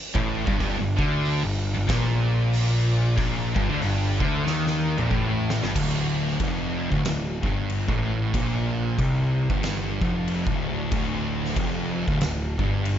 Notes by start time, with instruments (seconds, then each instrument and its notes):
0.15 picked electric bass A1, distorted electric guitar A2, kick
0.47 picked electric bass G1, distorted electric guitar G2, kick
0.60 picked electric bass G1, distorted electric guitar G2, kick, open hi-hat
0.79 picked electric bass G1, distorted electric guitar G2
0.98 picked electric bass D2, distorted electric guitar D3, kick
1.25 open hi-hat
1.43 picked electric bass G1, distorted electric guitar G2
1.75 picked electric bass G1, distorted electric guitar G2
1.87 picked electric bass A#1, distorted electric guitar A#2, kick, snare, open hi-hat
2.53 open hi-hat
3.18 picked electric bass A#1, distorted electric guitar A#2, kick, open hi-hat
3.56 picked electric bass G1, distorted electric guitar G2, kick
3.69 picked electric bass D2, distorted electric guitar D3
3.81 picked electric bass G1, distorted electric guitar G2, open hi-hat
4.20 picked electric bass D2, distorted electric guitar D3, kick
4.46 picked electric bass D#2, distorted electric guitar D#3, snare
4.67 snare
4.98 picked electric bass A#1, distorted electric guitar A#2, mid tom
5.11 picked electric bass A1, distorted electric guitar A2, kick
5.50 snare
5.63 picked electric bass G1, distorted electric guitar G2, snare
5.75 picked electric bass D1, distorted electric guitar D2, kick, crash
6.28 snare
6.40 picked electric bass F1, distorted electric guitar F2, kick, crash
6.90 picked electric bass D1, distorted electric guitar D2, kick
7.04 picked electric bass D1, distorted electric guitar D2, snare, crash
7.43 picked electric bass G1, distorted electric guitar G2, kick
7.70 crash
7.88 picked electric bass A1, distorted electric guitar A2, kick
8.34 picked electric bass A#1, distorted electric guitar A#2, kick, crash
8.98 picked electric bass C2, distorted electric guitar C3, kick, crash
9.50 picked electric bass G1, distorted electric guitar G2, kick
9.63 snare, crash
10.01 picked electric bass F1, distorted electric guitar F2, kick
10.28 crash
10.47 picked electric bass D1, distorted electric guitar D2, kick
10.92 picked electric bass D1, distorted electric guitar D2, kick, crash
11.45 snare
11.56 picked electric bass F1, distorted electric guitar F2, kick, crash
12.08 picked electric bass D1, distorted electric guitar D2, kick
12.21 picked electric bass D1, distorted electric guitar D2, snare, crash
12.59 picked electric bass G1, distorted electric guitar G2, kick
12.85 crash